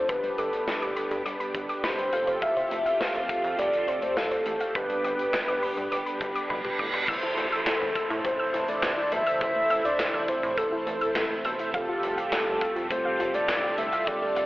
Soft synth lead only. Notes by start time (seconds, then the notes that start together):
Already playing: C5
0.09 B4
0.38 A4
1.84 C5
2.42 E5
3.00 F5
3.59 D5
4.02 C5
4.17 A4
4.75 B4
7.67 A4
8.25 C5
8.69 D5
9.12 E5
9.41 E5
9.85 D5
10.29 C5
10.58 A4
12.33 A4
12.91 C5
13.35 D5
13.78 E5
14.07 D5